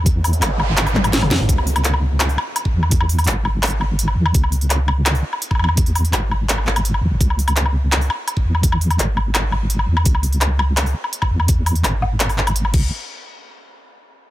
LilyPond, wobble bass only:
\new Staff \with { instrumentName = "Wobble bass" } { \clef bass \time 4/4 \key cis \minor \tempo 4 = 168 e,4 gis,,2~ gis,,8 fis,16 gis,,16 | cis,2~ cis,8 r4 e,8~ | e,4 gis,,2~ gis,,8 e,8 | cis,2~ cis,8 r4 e,8~ |
e,4 gis,,2~ gis,,8 e,16 gis,,16 | cis,2~ cis,8 r4 e,8~ | e,4 gis,,2~ gis,,8 e,8 | cis,2~ cis,8 r4 e,8~ |
e,4 gis,,2~ gis,,8 cis,8 | r1 | }